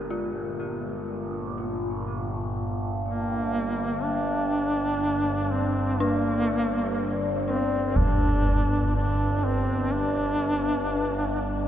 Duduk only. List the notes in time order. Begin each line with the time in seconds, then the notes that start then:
3.05 A#3
4.04 D4
5.52 C4
6.00 A#3
7.47 C4
7.97 D4
8.96 D4
9.45 C4
9.92 D4